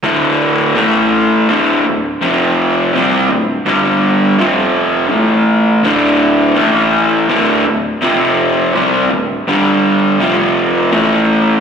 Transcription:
X:1
M:4/4
L:1/8
Q:1/4=83
K:Dm
V:1 name="Overdriven electric guitar" clef=bass
[D,,A,,D,]2 [A,,E,A,]2 [D,,A,,D,] [D,,A,,] [F,,C,F,]2 | [C,G,C] [D,,A,,] [G,,D,G,]2 [F,,C,F,]2 [A,,E,A,]2 | [D,,A,,D,]2 [A,,E,A,]2 [D,,A,,D,] [D,,A,,] [F,,C,F,]2 | [C,G,C] [D,,A,,] [G,,D,G,]2 [F,,C,F,]2 [A,,E,A,]2 |]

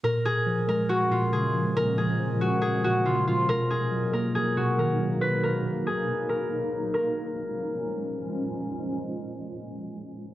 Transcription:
X:1
M:4/4
L:1/8
Q:1/4=139
K:Bbphr
V:1 name="Harp"
B A2 B G F A z | B A2 G A G F F | ^A _A2 ^A _A ^F ^A z | =B ^A2 _A2 ^A3 |
B6 z2 | z8 |]
V:2 name="Ambient pad" clef=bass
[B,,F,A,D]8- | [B,,F,A,D]8 | [=B,,^F,^A,^D]8- | [=B,,^F,^A,^D]8 |
[B,,F,A,D]8- | [B,,F,A,D]8 |]
V:3 name="Tine electric piano" clef=bass
B,,2 F, A,2 B,, D, F, | B,,2 F, A,2 B,, D, F, | =B,,2 ^F, ^A,2 B,, ^D, F,- | ^F,4 z4 |
z8 | z8 |]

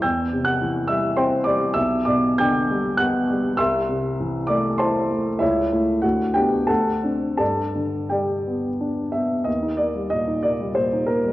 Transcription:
X:1
M:3/4
L:1/16
Q:1/4=96
K:G
V:1 name="Grand piano"
[ge'g']3 [ff']3 [ee']2 [cgc']2 [dd']2 | [ee']2 [dd']2 [gd'g']4 [ff']4 | [ec'e']6 [dd']2 [cac']2 z2 | [E^ce]4 [Ff]2 [Gg]2 [Afa]4 |
[Ada]4 [Gdg]6 e2 | [K:Eb] e2 d2 e2 d2 c2 B2 |]
V:2 name="Grand piano" clef=bass
E,,2 C,2 E,2 G,2 C2 G,2 | B,,,2 B,,2 D,2 G,2 B,2 G,2 | C,,2 C,2 E,2 A,2 E2 A,2 | ^C,,2 [A,E]2 D,,2 [B,D]2 D,,2 [=CD]2 |
G,,2 D,2 G,2 B,2 D2 B,2 | [K:Eb] E,, E B, G, B,, E B, G, B,, E B, G, |]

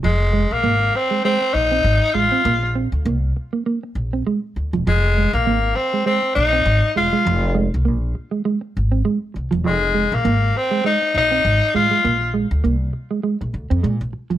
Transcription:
X:1
M:4/4
L:1/16
Q:"Swing 16ths" 1/4=100
K:Fdor
V:1 name="Tenor saxophone"
A,3 B,3 C2 C2 E4 F2- | F2 z12 z2 | A,3 B,3 C2 C2 E4 F2- | F2 z12 z2 |
A,3 B,3 C2 E2 E4 F2- | F2 z12 z2 |]
V:2 name="Clean electric guitar" clef=bass
F, z A, z B, z2 A, A, z2 C z2 A, C | B, z C z B, z2 B, B, z2 C A, z2 F, | F, z A, z B, z2 A, A, z2 C z2 A, A, | F, z A, z B, z2 A, A, z2 C A, z2 F, |
F, z A, z B, z2 A, A, z2 C z2 A, A, | B, z A, z B, z2 A, A, z2 C A, z2 F, |]
V:3 name="Upright bass" clef=bass
F,,,3 B,,, A,,,2 z4 B,,,2 A,,, z =A,,, z | B,,,3 D,, C,,2 z4 B,,,2 z2 D,, =E,,, | F,,,3 B,,, A,,,2 z4 B,,,2 A,,, z =E,,, z | F,,,3 C,, B,,,2 z4 A,,,2 z2 C,, =E,,, |
F,,,3 B,,, A,,,2 z4 B,,,2 A,,, z =A,,, z | B,,,3 D,, C,,2 z3 B,,, D,, F,, B,, B,,, z =E,,, |]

